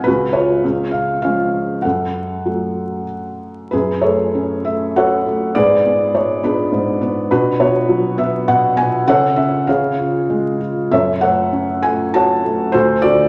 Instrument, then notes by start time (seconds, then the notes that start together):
felt piano
0.04 C#2 F#4 B4
0.33 F4 C#5
0.64 C#2
0.91 F5
1.22 F3 G#3 C#4 F5
1.82 F#2 A4 F#5
2.46 F#3 A3
3.71 F#2 G#4 B4
4.02 A3 G#4 A4 C#5
4.35 C#4
4.65 A3 E5
4.96 F#4 A4 C#5 F#5
5.26 A3
5.55 G#2 G#4 B4 D5
5.85 B3
6.14 G#3 C#5
6.43 B3 D4 G#4 B4
6.72 G#2
7.01 B3
7.31 B2 D4 F#4 B4
7.60 B3 F#4 C#5
7.89 F#3
8.18 B3 E5
8.48 B2 F#5
8.76 B3 G#5
9.07 C#3 A4 C#5 F#5
9.36 C#4 E5
9.67 C#3 G#4 C#5 F5
9.98 F4
10.30 G#3
10.61 F4
10.91 F#2 A4 C#5 E5
11.21 A3 A4 C#5 F#5
11.53 C#4
11.83 A3 G#5
12.14 F#4 C#5 F#5 A5
12.44 A3
12.72 D2 F#4 A4 C5
13.02 D3 F#4 A4 D5